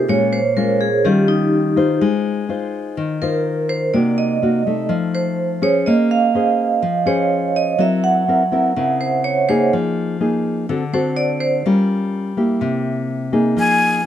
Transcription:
Already playing: vibraphone D#4 F4 G4 C5
0.08 nylon-string guitar A#2 G#3 C#4 F4, vibraphone C#5
0.33 vibraphone C5
0.56 nylon-string guitar G#3 C#4 F4, vibraphone A#4
0.81 vibraphone G#4
1.05 nylon-string guitar D#3 G3 C#4 F4, vibraphone G4
1.28 vibraphone D#4
1.76 nylon-string guitar D#4 F4 C5
2.01 nylon-string guitar G#3
2.49 nylon-string guitar D#4 F4 C5
2.97 nylon-string guitar D#3
3.22 nylon-string guitar D#4 F4 C5, vibraphone A#4
3.69 vibraphone C5
3.94 nylon-string guitar C3 A#3 D#4 F#4, vibraphone D5
4.18 vibraphone D#5
4.42 nylon-string guitar A#3 D#4 F#4
4.67 nylon-string guitar A3 D#4
4.89 nylon-string guitar F3
5.15 vibraphone C5
5.62 nylon-string guitar C#4 G#4 C5, vibraphone C#5
5.86 nylon-string guitar A#3, vibraphone D#5
6.11 vibraphone F5
6.35 nylon-string guitar C#4 G#4 C5
6.82 nylon-string guitar F3
7.06 nylon-string guitar C#4 G#4 C5, vibraphone C#5
7.56 vibraphone D#5
7.78 nylon-string guitar F#3 C4 E4 A#4, vibraphone E5
8.04 vibraphone F#5
8.28 nylon-string guitar C4 E4 A#4
8.52 nylon-string guitar C4 E4 A#4
8.76 nylon-string guitar C#3 C4 E4 A#4
9.01 vibraphone C5
9.24 vibraphone C#5
9.49 nylon-string guitar A#3 D#4 G#4, vibraphone C5
9.73 nylon-string guitar F3
10.21 nylon-string guitar A#3 D#4 G#4
10.69 nylon-string guitar D3 C4 F#4 A4
10.93 nylon-string guitar C4 F#4 A4, vibraphone C5
11.17 vibraphone D5
11.40 vibraphone C5
11.66 nylon-string guitar G3 C#4 F4 A#4
12.37 nylon-string guitar A#3 E4 G4
12.61 nylon-string guitar C3
13.33 nylon-string guitar A#3 D#4 G#4
13.57 nylon-string guitar F3, flute G#5

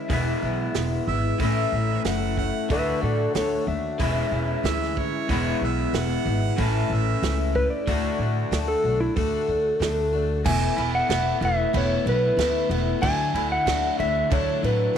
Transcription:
Already playing: steel-string acoustic guitar C#4, electric slide guitar E5
0.09 upright bass E1, steel-string acoustic guitar E2 B2 E3 G#3 B3 E4, tonewheel organ B3 E4 G#4, kick, open hi-hat
0.13 electric slide guitar E5
0.42 upright bass B1, steel-string acoustic guitar E3 G#3 B3 E4
0.74 upright bass E1, steel-string acoustic guitar E3 G#3 B3, snare, open hi-hat
0.78 steel-string acoustic guitar E4
1.07 upright bass G#1, steel-string acoustic guitar G#3 B3 E4, harmonica E5
1.11 steel-string acoustic guitar E3
1.40 upright bass A1, steel-string acoustic guitar A2 E3 A3 C#4, tonewheel organ C#4 E4 A4, harmonica E5, kick, open hi-hat
1.44 steel-string acoustic guitar E4
1.72 upright bass A1, steel-string acoustic guitar A3 C#4 E4
2.04 upright bass F#1, steel-string acoustic guitar E3 A3 C#4 E4, harmonica F#5, snare, open hi-hat
2.36 steel-string acoustic guitar A3 C#4 E4, harmonica F#5, kick
2.68 upright bass D2, steel-string acoustic guitar D3 A3 D4 F#4, tonewheel organ D4 F#4 A4, electric slide guitar B4, kick, open hi-hat
2.73 electric slide guitar E5
3.00 upright bass A2, steel-string acoustic guitar A3 D4 F#4, electric slide guitar A4
3.05 electric slide guitar D5
3.33 upright bass D2, steel-string acoustic guitar D3 A3 D4 F#4, electric slide guitar A4 C#5, snare, open hi-hat
3.66 upright bass D#2, steel-string acoustic guitar D4 F#4, electric slide guitar E5
3.70 steel-string acoustic guitar A3
3.99 upright bass E1, steel-string acoustic guitar E3 G#3 C#4 E4, tonewheel organ C#4 E4 G#4, kick, open hi-hat
4.31 upright bass E1, steel-string acoustic guitar G#3 C#4 E4
4.63 upright bass D2, steel-string acoustic guitar E3 G#3 C#4 E4, harmonica E5, snare, open hi-hat
4.82 snare
4.97 steel-string acoustic guitar G#3 C#4 E4, harmonica C#5, kick
5.29 upright bass E1, steel-string acoustic guitar E2 B2 E3 G#3 B3 E4, tonewheel organ B3 E4 G#4, kick, open hi-hat
5.61 upright bass B1, steel-string acoustic guitar E3 G#3 B3 E4, harmonica E5
5.93 upright bass E1, steel-string acoustic guitar E3 G#3 B3 E4, harmonica F#5, snare, open hi-hat
6.25 upright bass G#1, steel-string acoustic guitar E3 G#3 B3 E4
6.57 upright bass A1, steel-string acoustic guitar A2 E3 A3 C#4 E4, tonewheel organ C#4 E4 A4, kick, open hi-hat
6.61 harmonica A5
6.90 upright bass A1, steel-string acoustic guitar C#4 E4
6.94 steel-string acoustic guitar A3, harmonica E5
7.22 upright bass C#2, steel-string acoustic guitar E3 A3 C#4 E4, snare, open hi-hat
7.54 steel-string acoustic guitar A3 C#4 E4, electric slide guitar B4, kick
7.70 electric slide guitar D5
7.86 upright bass D2, steel-string acoustic guitar D3 A3 D4 F#4, tonewheel organ D4 F#4 A4, kick, open hi-hat
8.19 upright bass A2, steel-string acoustic guitar A3 D4 F#4
8.51 upright bass D2, steel-string acoustic guitar D3 A3 D4 F#4, snare, open hi-hat
8.68 electric slide guitar A4
8.83 upright bass B1, steel-string acoustic guitar D4 F#4
8.88 steel-string acoustic guitar A3
9.00 electric slide guitar E4
9.16 upright bass D2, steel-string acoustic guitar D3 A3 D4 F#4, electric slide guitar A4, kick, open hi-hat
9.47 upright bass D2, steel-string acoustic guitar A3 D4 F#4
9.79 upright bass D2, steel-string acoustic guitar D3 A3 D4 F#4, snare, open hi-hat
10.12 steel-string acoustic guitar A3 D4 F#4
10.44 upright bass E1, steel-string acoustic guitar E2 B2 E3 A3 B3 E4, tonewheel organ B3 E4 A4, grand piano E4 A4 B4 E5, electric slide guitar G#5, kick, crash
10.76 upright bass E1, steel-string acoustic guitar E3 A3 B3 E4, crash
10.95 electric slide guitar F#5
11.07 upright bass E1, steel-string acoustic guitar E3 A3 B3 E4, grand piano E4 A4 B4 E5, snare, crash
11.40 upright bass E1, steel-string acoustic guitar E3 A3 B3 E4, crash
11.45 electric slide guitar E5
11.73 upright bass E1, steel-string acoustic guitar E2 B2 E3 A3 B3 E4, grand piano E4 A4 B4 E5, electric slide guitar C#5, kick, crash
12.06 upright bass B1, steel-string acoustic guitar E3 A3 B3 E4, electric slide guitar B4, crash
12.37 upright bass D2, steel-string acoustic guitar E3 A3, grand piano E4 A4 B4 E5, snare, crash
12.41 steel-string acoustic guitar B3 E4
12.69 upright bass E1, steel-string acoustic guitar E3 A3 B3 E4, crash
13.01 upright bass D2, steel-string acoustic guitar D3 F#3 A3 D4 E4, tonewheel organ D4 E4 F#4, grand piano F#4 A4 D5 E5, electric slide guitar G#5, kick, crash
13.33 upright bass D2, steel-string acoustic guitar A3 D4 E4, crash
13.52 electric slide guitar F#5
13.65 upright bass D2, steel-string acoustic guitar F#3 A3 D4 E4, grand piano F#4 A4 D5 F#5, snare, crash
13.98 upright bass D2, steel-string acoustic guitar A3 D4 E4, electric slide guitar E5, crash
14.30 upright bass D2, steel-string acoustic guitar D3 F#3 A3 D4 E4, grand piano D4 F#4 A4 E5, electric slide guitar C#5, kick, crash
14.62 upright bass A2, clean electric guitar F#3, steel-string acoustic guitar D4 E4, electric slide guitar B4, crash
14.66 steel-string acoustic guitar A3
14.94 steel-string acoustic guitar F#3

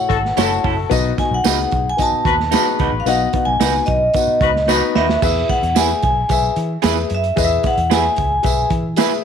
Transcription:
Already playing: grand piano A3 E4 F#4 C#5, vibraphone F#5
0.09 fingered electric bass G#1, horn section E4 F#4 A4, kick, closed hi-hat
0.25 snare
0.36 fingered electric bass F#1, grand piano A3 E4 F#4 C#5, clean electric guitar C#4 E4 A4, horn section E4 F#4 A4, snare, closed hi-hat, tambourine
0.64 fingered electric bass F#1, clean electric guitar C#4 E4 A4, kick, open hi-hat
0.90 fingered electric bass B1, grand piano B2 B3 D#4 F#4 D#5, kick, closed hi-hat, tambourine
1.17 grand piano B3 D#4 F#4 D#5, vibraphone G#5, kick, snare, closed hi-hat
1.31 fingered electric bass B1, vibraphone F#5
1.44 fingered electric bass C#2, grand piano B3 D#4 F#4 G#4, clean electric guitar D#4 F#4 B4, snare, closed hi-hat, tambourine
1.71 fingered electric bass B1, kick, closed hi-hat
1.89 vibraphone G#5
1.97 grand piano B3 D#4 F#4 D#5, kick, closed hi-hat, tambourine
2.02 vibraphone A5
2.12 muted fingered electric bass stroke
2.25 fingered electric bass D#2, horn section D#4 F#4 B4, kick, closed hi-hat
2.40 snare
2.51 grand piano B3 D#4 F#4 G#4, clean electric guitar D#4 F#4 B4, horn section D#4 F#4 B4, snare, closed hi-hat, tambourine
2.79 fingered electric bass C#2, clean electric guitar D#4 F#4 B4, kick, closed hi-hat
2.93 fingered electric bass A1
3.00 vibraphone F5
3.06 fingered electric bass B1, grand piano B2 B3 D#4 F#4 D#5, vibraphone F#5, closed hi-hat, tambourine
3.33 grand piano B3 D#4 F#4 D#5, kick, closed hi-hat
3.45 fingered electric bass B1, vibraphone G#5
3.60 fingered electric bass C#2, grand piano B3 D#4 F#4 B4, clean electric guitar D#4 F#4 B4, snare, closed hi-hat, tambourine
3.86 fingered electric bass B1, vibraphone D#5, kick, closed hi-hat
4.14 grand piano B3 D#4 F#4 F#5, kick, closed hi-hat, tambourine
4.27 muted fingered electric bass stroke
4.41 fingered electric bass C#2, horn section D#4 F#4 B4, kick, closed hi-hat
4.56 snare
4.68 grand piano B3 D#4 F#4 D#5, clean electric guitar D#4 F#4 B4, horn section D#4 F#4 B4, snare, tambourine
4.95 fingered electric bass D#2, clean electric guitar D#4 F#4 B4, vibraphone E5, snare
5.09 snare
5.22 fingered electric bass E2, grand piano E3 G#4 B4 E5, kick, crash, tambourine
5.49 vibraphone F#5, kick, snare, closed hi-hat
5.63 fingered electric bass E2, closed hi-hat
5.75 clean electric guitar E4 G#4 B4, grand piano G4 B4 E5, vibraphone G#5, snare, closed hi-hat, tambourine
5.82 grand piano G#4
6.02 fingered electric bass B1, vibraphone G#5, kick, closed hi-hat
6.29 fingered electric bass B1, grand piano G#4 B4 E5, kick, closed hi-hat, tambourine
6.56 fingered electric bass E3, closed hi-hat
6.82 fingered electric bass E2, clean electric guitar E4 G#4 B4, grand piano G#4 B4 E5, snare, closed hi-hat, tambourine
7.10 fingered electric bass F#2, closed hi-hat
7.15 vibraphone E5
7.24 closed hi-hat
7.36 fingered electric bass E2, grand piano E3 G#4 B4 D#5, kick, closed hi-hat, tambourine
7.45 grand piano E5
7.63 vibraphone F#5, kick, snare, closed hi-hat
7.78 fingered electric bass E2, closed hi-hat
7.90 clean electric guitar E4 G#4 B4, grand piano G4 B4 E5, vibraphone G#5, snare, closed hi-hat, tambourine
7.97 grand piano G#4
8.16 fingered electric bass C#2, vibraphone G#5, kick, closed hi-hat
8.43 fingered electric bass B1, grand piano G#4 B4 E5, kick, closed hi-hat, tambourine
8.70 fingered electric bass E3, kick, closed hi-hat
8.97 clean electric guitar E4 G#4 B4, grand piano G#4 B4 E5, snare, closed hi-hat, tambourine

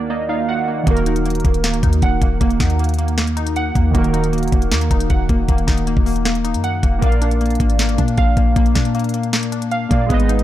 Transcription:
Already playing: analog synth pad D#2 D#3 A#3 F#4, synth keys D#3 D#4 F#4 A#4 D5
0.10 synth keys A#3 D#5
0.29 synth keys D#4 F5
0.49 synth keys F#5
0.68 synth keys A#3
0.83 808-style bass D#1, synth keys D#3 A#3 D#4, kick, closed hi-hat
0.88 synth keys F#4 A#4
0.97 closed hi-hat
1.06 synth keys D#4, closed hi-hat
1.16 closed hi-hat
1.25 synth keys A#3, closed hi-hat
1.30 closed hi-hat
1.35 closed hi-hat
1.40 closed hi-hat
1.45 808-style bass D1, synth keys A#3, kick, closed hi-hat
1.54 closed hi-hat
1.64 synth keys A#3, snare, closed hi-hat
1.74 closed hi-hat
1.83 808-style bass D#2, synth keys D#4, kick, closed hi-hat
1.93 closed hi-hat
2.02 808-style bass D#1, synth keys F#5, kick, closed hi-hat
2.22 808-style bass D#1, synth keys A#3, kick, closed hi-hat
2.41 808-style bass D#1, synth keys A#3, kick, closed hi-hat
2.50 closed hi-hat
2.60 808-style bass D#2, synth keys D#4, kick, snare, closed hi-hat
2.70 closed hi-hat
2.79 synth keys A#3, closed hi-hat
2.84 closed hi-hat
2.89 closed hi-hat
2.94 closed hi-hat
2.99 synth keys A#3, closed hi-hat
3.08 closed hi-hat
3.18 synth keys A#3, snare, closed hi-hat
3.27 closed hi-hat
3.37 synth keys D#4, closed hi-hat
3.47 closed hi-hat
3.56 synth keys F#5, closed hi-hat
3.75 808-style bass D#2, synth keys A#3, kick, closed hi-hat
3.91 808-style bass D#1, synth keys D#3 A#3 D#4, kick, closed hi-hat
3.96 synth keys F#4 A#4
4.04 closed hi-hat
4.13 synth keys D#4, closed hi-hat
4.24 closed hi-hat
4.33 synth keys A#3, closed hi-hat
4.38 closed hi-hat
4.43 closed hi-hat
4.48 closed hi-hat
4.52 808-style bass D#1, synth keys A#3, kick, closed hi-hat
4.62 closed hi-hat
4.72 808-style bass D#2, synth keys A#3, snare, closed hi-hat
4.81 closed hi-hat
4.91 808-style bass D#1, synth keys D#4, kick, closed hi-hat
5.00 closed hi-hat
5.10 808-style bass D#1, synth keys F#5, kick, closed hi-hat
5.29 808-style bass D#1, synth keys A#3, kick, closed hi-hat
5.48 808-style bass D#1, synth keys A#3, kick, closed hi-hat
5.58 closed hi-hat
5.67 808-style bass D#1, synth keys D#4, kick, snare, closed hi-hat
5.78 closed hi-hat
5.87 synth keys A#3, closed hi-hat
5.97 808-style bass D#1, kick
6.06 synth keys A#3, open hi-hat
6.16 closed hi-hat
6.25 synth keys A#3, snare, closed hi-hat
6.35 closed hi-hat
6.44 synth keys D#4, closed hi-hat
6.54 808-style bass F#2, closed hi-hat
6.64 synth keys F#5, closed hi-hat
6.83 808-style bass D#1, synth keys A#3, kick, closed hi-hat
6.99 808-style bass A#1, synth keys A#3 A#4, kick, closed hi-hat
7.04 synth keys D5 F5
7.12 closed hi-hat
7.22 synth keys D4, closed hi-hat
7.31 closed hi-hat
7.41 synth keys A#3, closed hi-hat
7.46 closed hi-hat
7.50 closed hi-hat
7.55 closed hi-hat
7.60 808-style bass G#1, synth keys A#3, kick, closed hi-hat
7.70 closed hi-hat
7.79 synth keys A#3, snare, closed hi-hat
7.89 closed hi-hat
7.98 808-style bass A#2, synth keys D4, kick, closed hi-hat
8.08 closed hi-hat
8.17 808-style bass A#1, synth keys F5, kick, closed hi-hat
8.37 808-style bass A#1, synth keys A#3, kick, closed hi-hat
8.56 808-style bass A#1, synth keys A#3, kick, closed hi-hat
8.66 closed hi-hat
8.75 808-style bass A#2, synth keys D4, kick, snare, closed hi-hat
8.85 closed hi-hat
8.95 synth keys A#3, closed hi-hat
8.99 closed hi-hat
9.04 closed hi-hat
9.09 closed hi-hat
9.14 synth keys A#3, closed hi-hat
9.23 closed hi-hat
9.33 synth keys A#3, snare, closed hi-hat
9.43 closed hi-hat
9.52 synth keys D4, closed hi-hat
9.62 closed hi-hat
9.71 synth keys F5, closed hi-hat
9.89 808-style bass A#2, synth keys A#3 A#4 D5 F5, kick, closed hi-hat
10.06 808-style bass G#1, synth keys G#3 B3 G#4, kick, closed hi-hat
10.11 synth keys B4 D#5
10.20 closed hi-hat
10.29 synth keys D#4, closed hi-hat
10.39 closed hi-hat

